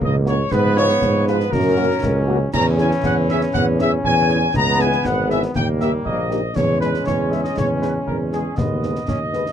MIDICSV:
0, 0, Header, 1, 6, 480
1, 0, Start_track
1, 0, Tempo, 503356
1, 496, Time_signature, 2, 2, 24, 8
1, 9082, End_track
2, 0, Start_track
2, 0, Title_t, "Trumpet section"
2, 0, Program_c, 0, 61
2, 33, Note_on_c, 0, 75, 92
2, 137, Note_off_c, 0, 75, 0
2, 268, Note_on_c, 0, 73, 96
2, 486, Note_off_c, 0, 73, 0
2, 495, Note_on_c, 0, 71, 110
2, 734, Note_on_c, 0, 73, 116
2, 736, Note_off_c, 0, 71, 0
2, 1181, Note_off_c, 0, 73, 0
2, 1215, Note_on_c, 0, 71, 100
2, 1443, Note_on_c, 0, 70, 115
2, 1455, Note_off_c, 0, 71, 0
2, 2169, Note_off_c, 0, 70, 0
2, 2414, Note_on_c, 0, 82, 124
2, 2522, Note_off_c, 0, 82, 0
2, 2661, Note_on_c, 0, 80, 97
2, 2768, Note_off_c, 0, 80, 0
2, 2903, Note_on_c, 0, 78, 101
2, 3010, Note_off_c, 0, 78, 0
2, 3148, Note_on_c, 0, 76, 106
2, 3253, Note_off_c, 0, 76, 0
2, 3370, Note_on_c, 0, 78, 112
2, 3479, Note_off_c, 0, 78, 0
2, 3626, Note_on_c, 0, 76, 113
2, 3732, Note_off_c, 0, 76, 0
2, 3865, Note_on_c, 0, 80, 114
2, 4308, Note_off_c, 0, 80, 0
2, 4349, Note_on_c, 0, 82, 127
2, 4583, Note_off_c, 0, 82, 0
2, 4584, Note_on_c, 0, 80, 113
2, 4817, Note_on_c, 0, 78, 97
2, 4820, Note_off_c, 0, 80, 0
2, 5056, Note_on_c, 0, 76, 104
2, 5057, Note_off_c, 0, 78, 0
2, 5164, Note_off_c, 0, 76, 0
2, 5302, Note_on_c, 0, 79, 110
2, 5409, Note_off_c, 0, 79, 0
2, 5533, Note_on_c, 0, 76, 96
2, 5642, Note_off_c, 0, 76, 0
2, 5771, Note_on_c, 0, 75, 84
2, 6220, Note_off_c, 0, 75, 0
2, 6246, Note_on_c, 0, 73, 98
2, 6483, Note_on_c, 0, 71, 92
2, 6492, Note_off_c, 0, 73, 0
2, 6713, Note_off_c, 0, 71, 0
2, 6727, Note_on_c, 0, 73, 88
2, 6955, Note_off_c, 0, 73, 0
2, 6971, Note_on_c, 0, 76, 87
2, 7092, Note_on_c, 0, 75, 78
2, 7094, Note_off_c, 0, 76, 0
2, 7207, Note_off_c, 0, 75, 0
2, 7226, Note_on_c, 0, 73, 87
2, 7332, Note_off_c, 0, 73, 0
2, 7453, Note_on_c, 0, 71, 74
2, 7562, Note_off_c, 0, 71, 0
2, 7687, Note_on_c, 0, 70, 69
2, 7798, Note_off_c, 0, 70, 0
2, 7930, Note_on_c, 0, 68, 73
2, 8157, Note_off_c, 0, 68, 0
2, 8166, Note_on_c, 0, 75, 87
2, 9082, Note_off_c, 0, 75, 0
2, 9082, End_track
3, 0, Start_track
3, 0, Title_t, "French horn section"
3, 0, Program_c, 1, 60
3, 251, Note_on_c, 1, 66, 68
3, 252, Note_on_c, 1, 61, 70
3, 253, Note_on_c, 1, 58, 73
3, 339, Note_off_c, 1, 66, 0
3, 340, Note_off_c, 1, 58, 0
3, 340, Note_off_c, 1, 61, 0
3, 730, Note_on_c, 1, 65, 77
3, 731, Note_on_c, 1, 59, 75
3, 732, Note_on_c, 1, 56, 81
3, 818, Note_off_c, 1, 65, 0
3, 819, Note_off_c, 1, 56, 0
3, 819, Note_off_c, 1, 59, 0
3, 1212, Note_on_c, 1, 59, 75
3, 1216, Note_on_c, 1, 56, 79
3, 1218, Note_on_c, 1, 65, 82
3, 1299, Note_off_c, 1, 59, 0
3, 1302, Note_off_c, 1, 56, 0
3, 1304, Note_off_c, 1, 65, 0
3, 1691, Note_on_c, 1, 66, 84
3, 1692, Note_on_c, 1, 61, 76
3, 1694, Note_on_c, 1, 58, 78
3, 1779, Note_off_c, 1, 61, 0
3, 1779, Note_off_c, 1, 66, 0
3, 1781, Note_off_c, 1, 58, 0
3, 2172, Note_on_c, 1, 66, 86
3, 2175, Note_on_c, 1, 61, 81
3, 2177, Note_on_c, 1, 58, 76
3, 2259, Note_off_c, 1, 66, 0
3, 2262, Note_off_c, 1, 61, 0
3, 2263, Note_off_c, 1, 58, 0
3, 2647, Note_on_c, 1, 61, 73
3, 2649, Note_on_c, 1, 64, 78
3, 2651, Note_on_c, 1, 68, 80
3, 2735, Note_off_c, 1, 61, 0
3, 2737, Note_off_c, 1, 64, 0
3, 2738, Note_off_c, 1, 68, 0
3, 3132, Note_on_c, 1, 61, 76
3, 3133, Note_on_c, 1, 64, 75
3, 3134, Note_on_c, 1, 68, 76
3, 3219, Note_off_c, 1, 61, 0
3, 3220, Note_off_c, 1, 64, 0
3, 3220, Note_off_c, 1, 68, 0
3, 3607, Note_on_c, 1, 61, 85
3, 3607, Note_on_c, 1, 68, 81
3, 3609, Note_on_c, 1, 64, 72
3, 3695, Note_off_c, 1, 61, 0
3, 3696, Note_off_c, 1, 68, 0
3, 3697, Note_off_c, 1, 64, 0
3, 4086, Note_on_c, 1, 61, 81
3, 4088, Note_on_c, 1, 68, 78
3, 4089, Note_on_c, 1, 64, 70
3, 4175, Note_off_c, 1, 61, 0
3, 4176, Note_off_c, 1, 68, 0
3, 4177, Note_off_c, 1, 64, 0
3, 4566, Note_on_c, 1, 59, 73
3, 4566, Note_on_c, 1, 68, 73
3, 4568, Note_on_c, 1, 64, 78
3, 4654, Note_off_c, 1, 59, 0
3, 4655, Note_off_c, 1, 68, 0
3, 4656, Note_off_c, 1, 64, 0
3, 5048, Note_on_c, 1, 68, 76
3, 5049, Note_on_c, 1, 64, 72
3, 5051, Note_on_c, 1, 59, 70
3, 5136, Note_off_c, 1, 68, 0
3, 5138, Note_off_c, 1, 64, 0
3, 5139, Note_off_c, 1, 59, 0
3, 5531, Note_on_c, 1, 63, 68
3, 5531, Note_on_c, 1, 67, 72
3, 5532, Note_on_c, 1, 58, 72
3, 5618, Note_off_c, 1, 67, 0
3, 5619, Note_off_c, 1, 63, 0
3, 5620, Note_off_c, 1, 58, 0
3, 6007, Note_on_c, 1, 58, 67
3, 6007, Note_on_c, 1, 63, 67
3, 6007, Note_on_c, 1, 67, 63
3, 6096, Note_off_c, 1, 58, 0
3, 6096, Note_off_c, 1, 63, 0
3, 6096, Note_off_c, 1, 67, 0
3, 6486, Note_on_c, 1, 56, 63
3, 6488, Note_on_c, 1, 68, 68
3, 6575, Note_off_c, 1, 56, 0
3, 6577, Note_off_c, 1, 68, 0
3, 6970, Note_on_c, 1, 68, 63
3, 6971, Note_on_c, 1, 56, 59
3, 6973, Note_off_c, 1, 68, 0
3, 6973, Note_on_c, 1, 68, 57
3, 7059, Note_off_c, 1, 56, 0
3, 7060, Note_off_c, 1, 68, 0
3, 7451, Note_on_c, 1, 68, 56
3, 7454, Note_on_c, 1, 56, 58
3, 7458, Note_off_c, 1, 68, 0
3, 7458, Note_on_c, 1, 68, 57
3, 7541, Note_off_c, 1, 56, 0
3, 7544, Note_off_c, 1, 68, 0
3, 7926, Note_on_c, 1, 68, 50
3, 7927, Note_on_c, 1, 56, 54
3, 8016, Note_off_c, 1, 56, 0
3, 8016, Note_off_c, 1, 68, 0
3, 8411, Note_on_c, 1, 56, 52
3, 8411, Note_on_c, 1, 68, 53
3, 8412, Note_on_c, 1, 71, 55
3, 8499, Note_off_c, 1, 56, 0
3, 8500, Note_off_c, 1, 68, 0
3, 8500, Note_off_c, 1, 71, 0
3, 8893, Note_on_c, 1, 68, 50
3, 8894, Note_on_c, 1, 71, 52
3, 8896, Note_on_c, 1, 56, 50
3, 8981, Note_off_c, 1, 68, 0
3, 8982, Note_off_c, 1, 71, 0
3, 8983, Note_off_c, 1, 56, 0
3, 9082, End_track
4, 0, Start_track
4, 0, Title_t, "Trombone section"
4, 0, Program_c, 2, 61
4, 0, Note_on_c, 2, 49, 85
4, 0, Note_on_c, 2, 58, 84
4, 336, Note_off_c, 2, 49, 0
4, 336, Note_off_c, 2, 58, 0
4, 498, Note_on_c, 2, 53, 89
4, 500, Note_on_c, 2, 59, 93
4, 1419, Note_off_c, 2, 53, 0
4, 1419, Note_off_c, 2, 59, 0
4, 1465, Note_on_c, 2, 54, 92
4, 1465, Note_on_c, 2, 61, 93
4, 2406, Note_off_c, 2, 61, 0
4, 2414, Note_on_c, 2, 52, 104
4, 2418, Note_on_c, 2, 61, 100
4, 2420, Note_off_c, 2, 54, 0
4, 4297, Note_off_c, 2, 52, 0
4, 4299, Note_off_c, 2, 61, 0
4, 4332, Note_on_c, 2, 52, 88
4, 4333, Note_on_c, 2, 59, 97
4, 5257, Note_off_c, 2, 52, 0
4, 5257, Note_off_c, 2, 59, 0
4, 5293, Note_on_c, 2, 55, 81
4, 5298, Note_on_c, 2, 58, 84
4, 6087, Note_off_c, 2, 55, 0
4, 6087, Note_off_c, 2, 58, 0
4, 6249, Note_on_c, 2, 56, 90
4, 6251, Note_on_c, 2, 61, 86
4, 8136, Note_off_c, 2, 56, 0
4, 8176, Note_off_c, 2, 61, 0
4, 8178, Note_on_c, 2, 59, 65
4, 8179, Note_on_c, 2, 56, 59
4, 8581, Note_off_c, 2, 56, 0
4, 8611, Note_off_c, 2, 59, 0
4, 8660, Note_on_c, 2, 61, 74
4, 8768, Note_off_c, 2, 61, 0
4, 8897, Note_on_c, 2, 59, 51
4, 9006, Note_off_c, 2, 59, 0
4, 9082, End_track
5, 0, Start_track
5, 0, Title_t, "Tuba"
5, 0, Program_c, 3, 58
5, 24, Note_on_c, 3, 37, 95
5, 420, Note_off_c, 3, 37, 0
5, 497, Note_on_c, 3, 44, 107
5, 896, Note_off_c, 3, 44, 0
5, 977, Note_on_c, 3, 44, 90
5, 1376, Note_off_c, 3, 44, 0
5, 1449, Note_on_c, 3, 42, 107
5, 1852, Note_off_c, 3, 42, 0
5, 1933, Note_on_c, 3, 37, 96
5, 2334, Note_off_c, 3, 37, 0
5, 2417, Note_on_c, 3, 40, 105
5, 2786, Note_off_c, 3, 40, 0
5, 2906, Note_on_c, 3, 40, 93
5, 3301, Note_off_c, 3, 40, 0
5, 3393, Note_on_c, 3, 40, 104
5, 3784, Note_off_c, 3, 40, 0
5, 3868, Note_on_c, 3, 40, 97
5, 4262, Note_off_c, 3, 40, 0
5, 4336, Note_on_c, 3, 37, 96
5, 4736, Note_off_c, 3, 37, 0
5, 4819, Note_on_c, 3, 32, 96
5, 5218, Note_off_c, 3, 32, 0
5, 5302, Note_on_c, 3, 39, 95
5, 5700, Note_off_c, 3, 39, 0
5, 5784, Note_on_c, 3, 34, 81
5, 6181, Note_off_c, 3, 34, 0
5, 6256, Note_on_c, 3, 40, 92
5, 6657, Note_off_c, 3, 40, 0
5, 6738, Note_on_c, 3, 40, 80
5, 7138, Note_off_c, 3, 40, 0
5, 7224, Note_on_c, 3, 40, 81
5, 7621, Note_off_c, 3, 40, 0
5, 7709, Note_on_c, 3, 40, 73
5, 8104, Note_off_c, 3, 40, 0
5, 8184, Note_on_c, 3, 39, 74
5, 8582, Note_off_c, 3, 39, 0
5, 8661, Note_on_c, 3, 39, 61
5, 9060, Note_off_c, 3, 39, 0
5, 9082, End_track
6, 0, Start_track
6, 0, Title_t, "Drums"
6, 12, Note_on_c, 9, 35, 86
6, 108, Note_off_c, 9, 35, 0
6, 251, Note_on_c, 9, 38, 55
6, 347, Note_off_c, 9, 38, 0
6, 490, Note_on_c, 9, 35, 84
6, 490, Note_on_c, 9, 38, 70
6, 586, Note_off_c, 9, 35, 0
6, 586, Note_off_c, 9, 38, 0
6, 734, Note_on_c, 9, 38, 66
6, 830, Note_off_c, 9, 38, 0
6, 853, Note_on_c, 9, 38, 59
6, 948, Note_off_c, 9, 38, 0
6, 970, Note_on_c, 9, 35, 80
6, 970, Note_on_c, 9, 38, 80
6, 1066, Note_off_c, 9, 35, 0
6, 1066, Note_off_c, 9, 38, 0
6, 1217, Note_on_c, 9, 38, 55
6, 1312, Note_off_c, 9, 38, 0
6, 1338, Note_on_c, 9, 38, 59
6, 1433, Note_off_c, 9, 38, 0
6, 1454, Note_on_c, 9, 35, 95
6, 1454, Note_on_c, 9, 38, 64
6, 1549, Note_off_c, 9, 35, 0
6, 1549, Note_off_c, 9, 38, 0
6, 1938, Note_on_c, 9, 35, 84
6, 1938, Note_on_c, 9, 38, 85
6, 2034, Note_off_c, 9, 35, 0
6, 2034, Note_off_c, 9, 38, 0
6, 2419, Note_on_c, 9, 35, 89
6, 2419, Note_on_c, 9, 38, 81
6, 2419, Note_on_c, 9, 49, 57
6, 2514, Note_off_c, 9, 35, 0
6, 2514, Note_off_c, 9, 38, 0
6, 2514, Note_off_c, 9, 49, 0
6, 2655, Note_on_c, 9, 38, 65
6, 2751, Note_off_c, 9, 38, 0
6, 2778, Note_on_c, 9, 38, 59
6, 2874, Note_off_c, 9, 38, 0
6, 2893, Note_on_c, 9, 35, 79
6, 2893, Note_on_c, 9, 38, 81
6, 2988, Note_off_c, 9, 35, 0
6, 2988, Note_off_c, 9, 38, 0
6, 3138, Note_on_c, 9, 38, 53
6, 3233, Note_off_c, 9, 38, 0
6, 3255, Note_on_c, 9, 38, 62
6, 3351, Note_off_c, 9, 38, 0
6, 3379, Note_on_c, 9, 35, 90
6, 3379, Note_on_c, 9, 38, 77
6, 3474, Note_off_c, 9, 35, 0
6, 3474, Note_off_c, 9, 38, 0
6, 3617, Note_on_c, 9, 38, 64
6, 3712, Note_off_c, 9, 38, 0
6, 3852, Note_on_c, 9, 35, 79
6, 3947, Note_off_c, 9, 35, 0
6, 4094, Note_on_c, 9, 38, 52
6, 4190, Note_off_c, 9, 38, 0
6, 4330, Note_on_c, 9, 35, 86
6, 4330, Note_on_c, 9, 38, 74
6, 4425, Note_off_c, 9, 35, 0
6, 4425, Note_off_c, 9, 38, 0
6, 4574, Note_on_c, 9, 38, 68
6, 4670, Note_off_c, 9, 38, 0
6, 4696, Note_on_c, 9, 38, 59
6, 4791, Note_off_c, 9, 38, 0
6, 4813, Note_on_c, 9, 35, 75
6, 4813, Note_on_c, 9, 38, 79
6, 4908, Note_off_c, 9, 35, 0
6, 4908, Note_off_c, 9, 38, 0
6, 5059, Note_on_c, 9, 38, 53
6, 5155, Note_off_c, 9, 38, 0
6, 5176, Note_on_c, 9, 38, 58
6, 5271, Note_off_c, 9, 38, 0
6, 5296, Note_on_c, 9, 35, 81
6, 5296, Note_on_c, 9, 38, 76
6, 5392, Note_off_c, 9, 35, 0
6, 5392, Note_off_c, 9, 38, 0
6, 5537, Note_on_c, 9, 38, 60
6, 5633, Note_off_c, 9, 38, 0
6, 5777, Note_on_c, 9, 35, 71
6, 5873, Note_off_c, 9, 35, 0
6, 6020, Note_on_c, 9, 38, 48
6, 6115, Note_off_c, 9, 38, 0
6, 6258, Note_on_c, 9, 35, 84
6, 6258, Note_on_c, 9, 38, 81
6, 6258, Note_on_c, 9, 49, 30
6, 6354, Note_off_c, 9, 35, 0
6, 6354, Note_off_c, 9, 38, 0
6, 6354, Note_off_c, 9, 49, 0
6, 6498, Note_on_c, 9, 38, 62
6, 6594, Note_off_c, 9, 38, 0
6, 6621, Note_on_c, 9, 38, 55
6, 6716, Note_off_c, 9, 38, 0
6, 6744, Note_on_c, 9, 35, 75
6, 6744, Note_on_c, 9, 38, 75
6, 6840, Note_off_c, 9, 35, 0
6, 6840, Note_off_c, 9, 38, 0
6, 6983, Note_on_c, 9, 38, 45
6, 7078, Note_off_c, 9, 38, 0
6, 7103, Note_on_c, 9, 38, 55
6, 7198, Note_off_c, 9, 38, 0
6, 7223, Note_on_c, 9, 35, 79
6, 7223, Note_on_c, 9, 38, 80
6, 7318, Note_off_c, 9, 35, 0
6, 7318, Note_off_c, 9, 38, 0
6, 7462, Note_on_c, 9, 38, 60
6, 7557, Note_off_c, 9, 38, 0
6, 7701, Note_on_c, 9, 35, 72
6, 7796, Note_off_c, 9, 35, 0
6, 7942, Note_on_c, 9, 38, 53
6, 8037, Note_off_c, 9, 38, 0
6, 8180, Note_on_c, 9, 35, 86
6, 8180, Note_on_c, 9, 38, 77
6, 8275, Note_off_c, 9, 35, 0
6, 8275, Note_off_c, 9, 38, 0
6, 8421, Note_on_c, 9, 38, 53
6, 8517, Note_off_c, 9, 38, 0
6, 8541, Note_on_c, 9, 38, 53
6, 8636, Note_off_c, 9, 38, 0
6, 8660, Note_on_c, 9, 35, 77
6, 8660, Note_on_c, 9, 38, 74
6, 8756, Note_off_c, 9, 35, 0
6, 8756, Note_off_c, 9, 38, 0
6, 8902, Note_on_c, 9, 38, 47
6, 8997, Note_off_c, 9, 38, 0
6, 9024, Note_on_c, 9, 38, 53
6, 9082, Note_off_c, 9, 38, 0
6, 9082, End_track
0, 0, End_of_file